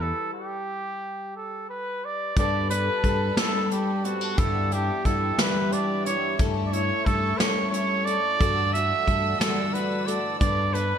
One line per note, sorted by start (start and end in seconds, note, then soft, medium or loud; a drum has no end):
0.00 0.11 E2 medium
0.00 0.31 E3 medium
0.00 2.37 G3 medium
0.00 0.32 E4 soft
0.00 0.33 A4 medium
0.33 1.31 G4 medium
1.36 1.67 A4 medium
1.69 2.06 B4 medium
2.05 2.38 D5 medium
2.36 2.88 G2 medium
2.36 4.37 G2 medium
2.36 2.70 G3 medium
2.36 2.70 B3 medium
2.36 2.71 D4 medium
2.36 4.36 A4 medium
2.36 2.69 A4 medium
2.36 4.35 B4 medium
2.36 2.69 D5 loud
2.36 4.36 A5 medium
2.36 4.36 B5 medium
2.36 kick loud
2.36 closed hi-hat medium
2.70 3.04 B3 soft
2.70 3.04 D4 soft
2.70 3.04 A4 medium
2.70 3.38 B4 loud
2.70 closed hi-hat medium
3.04 3.29 G2 medium
3.04 3.37 G3 medium
3.04 3.38 B3 medium
3.04 3.38 D4 medium
3.04 3.37 A4 medium
3.04 kick medium
3.04 closed hi-hat medium
3.37 4.13 G3 medium
3.37 3.69 G3 medium
3.37 3.70 B3 medium
3.37 3.71 D4 medium
3.37 3.70 A4 medium
3.37 3.71 A4 medium
3.37 snare loud
3.37 closed hi-hat medium
3.70 4.04 G3 medium
3.70 4.04 B3 medium
3.70 4.04 D4 medium
3.70 4.06 G4 medium
3.70 4.03 A4 medium
3.70 closed hi-hat medium
4.04 4.37 B3 soft
4.04 4.21 C4 medium
4.04 4.38 D4 soft
4.04 4.40 F#4 medium
4.04 4.38 A4 medium
4.04 closed hi-hat medium
4.21 4.38 D4 soft
4.37 4.71 G2 medium
4.37 4.89 G2 loud
4.37 4.71 D3 medium
4.37 4.71 E3 medium
4.37 4.71 G3 medium
4.37 4.71 B3 medium
4.37 4.70 E4 medium
4.37 6.37 G4 medium
4.37 4.74 A4 medium
4.37 8.36 E5 medium
4.37 kick loud
4.37 closed hi-hat medium
4.71 5.04 E3 soft
4.71 5.05 G3 soft
4.71 5.06 B3 soft
4.71 5.71 D4 medium
4.71 5.05 E4 medium
4.71 5.07 G4 medium
4.71 closed hi-hat medium
5.05 5.31 G2 medium
5.05 5.38 E3 medium
5.05 5.38 G3 medium
5.05 5.38 B3 medium
5.05 5.37 E4 medium
5.05 5.43 A4 medium
5.05 kick medium
5.05 closed hi-hat medium
5.38 5.73 G2 soft
5.38 5.72 D3 medium
5.38 5.70 E3 medium
5.38 6.15 G3 medium
5.38 5.70 G3 medium
5.38 5.72 B3 medium
5.38 5.72 E4 medium
5.38 5.74 B4 medium
5.38 snare loud
5.38 closed hi-hat medium
5.71 6.05 E3 medium
5.71 6.05 G3 medium
5.71 6.05 B3 medium
5.71 6.35 D4 medium
5.71 6.04 E4 medium
5.71 6.05 D5 medium
5.71 closed hi-hat medium
6.05 6.37 E3 soft
6.05 6.37 G3 soft
6.05 6.39 B3 soft
6.05 6.38 E4 soft
6.05 6.43 C#5 loud
6.05 closed hi-hat medium
6.38 8.39 G2 medium
6.38 6.90 G2 medium
6.38 6.72 G3 medium
6.38 6.72 A3 medium
6.38 6.71 C#4 medium
6.38 6.70 E4 medium
6.38 7.39 A4 medium
6.38 8.39 A4 medium
6.38 8.39 C#6 medium
6.38 kick loud
6.38 closed hi-hat medium
6.65 6.74 D5 medium
6.71 7.05 A3 soft
6.71 7.05 C#4 soft
6.71 7.05 E4 soft
6.71 7.07 C#5 loud
6.71 closed hi-hat medium
7.05 7.32 G2 medium
7.05 7.38 G3 medium
7.05 7.38 A3 medium
7.05 7.38 C#4 medium
7.05 7.37 E4 medium
7.05 7.40 A4 medium
7.05 kick medium
7.05 closed hi-hat medium
7.38 7.70 G3 medium
7.38 8.17 G3 medium
7.38 7.71 A3 medium
7.38 7.72 C#4 medium
7.38 7.72 E4 medium
7.38 8.07 A4 medium
7.38 7.70 C#5 medium
7.38 snare loud
7.38 closed hi-hat medium
7.71 8.06 G3 medium
7.71 8.06 A3 medium
7.71 8.07 C#4 medium
7.71 8.06 C#5 loud
7.71 closed hi-hat medium
7.75 8.05 E4 medium
8.05 8.39 A3 soft
8.05 8.40 E4 medium
8.05 8.40 A4 medium
8.05 8.74 D5 loud
8.05 closed hi-hat medium
8.40 8.73 G2 medium
8.40 8.91 G2 loud
8.40 8.73 D3 medium
8.40 8.74 E3 medium
8.40 8.73 A3 medium
8.40 8.73 D4 medium
8.40 8.72 F#4 medium
8.40 9.07 A4 medium
8.40 10.40 D5 medium
8.40 10.40 F#5 medium
8.40 10.40 E6 medium
8.40 kick loud
8.40 closed hi-hat medium
8.73 9.04 E3 soft
8.73 9.05 A3 soft
8.73 9.06 D4 soft
8.73 9.06 F#4 medium
8.73 9.41 E5 loud
8.73 closed hi-hat medium
9.05 9.33 G2 medium
9.05 9.39 E3 soft
9.05 9.39 A3 medium
9.05 9.39 D4 medium
9.05 9.38 F#4 medium
9.05 10.06 A4 medium
9.05 kick medium
9.05 closed hi-hat medium
9.39 9.74 G2 medium
9.39 9.74 D3 soft
9.39 9.71 E3 medium
9.39 10.17 G3 medium
9.39 9.72 A3 medium
9.39 9.74 D4 medium
9.39 9.73 F#4 medium
9.39 9.75 A4 medium
9.39 snare loud
9.39 closed hi-hat medium
9.73 10.07 E3 medium
9.73 10.06 A3 medium
9.73 10.05 D4 medium
9.73 10.04 F#4 medium
9.73 10.08 B4 medium
9.73 closed hi-hat medium
10.05 10.40 E3 soft
10.05 10.40 A3 soft
10.05 10.40 D4 soft
10.05 10.40 F#4 soft
10.05 10.37 A4 medium
10.05 10.39 D5 medium
10.05 closed hi-hat medium
10.39 10.98 G2 medium
10.39 10.92 G2 medium
10.39 10.74 G3 medium
10.39 10.74 B3 medium
10.39 10.74 D4 medium
10.39 10.98 A4 medium
10.39 10.72 A4 medium
10.39 10.98 B4 medium
10.39 10.75 D5 loud
10.39 10.98 A5 medium
10.39 10.98 B5 medium
10.39 kick loud
10.39 closed hi-hat medium
10.73 10.98 B3 soft
10.73 10.98 D4 soft
10.73 10.98 A4 soft
10.73 10.98 B4 medium
10.73 closed hi-hat medium